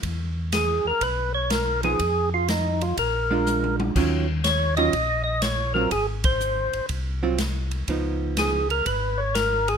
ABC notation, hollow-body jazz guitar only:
X:1
M:4/4
L:1/8
Q:"Swing" 1/4=122
K:Dbmix
V:1 name="Hollow-body jazz guitar"
z6 z [F,=B,E^G] | z4 z [A,=DF]3 | [E,G,DF] z2 [E,G,DF] z3 [G,=CF] | z4 z [G,=CF] z2 |
[F,CE]3 z4 z |]